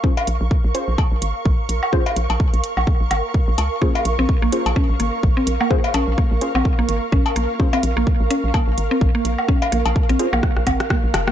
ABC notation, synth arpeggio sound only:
X:1
M:4/4
L:1/16
Q:"Swing 16ths" 1/4=127
K:Bbm
V:1 name="Synth arpeggio sound"
z16 | z16 | B, z2 C z B, z2 D z B, z2 C z B, | z2 D z B, z2 C z B, z2 D z B, z |
z C z B, z2 D z B, z2 C z B, z2 | D z B, z2 C z B, z2 C z B, z2 B, |]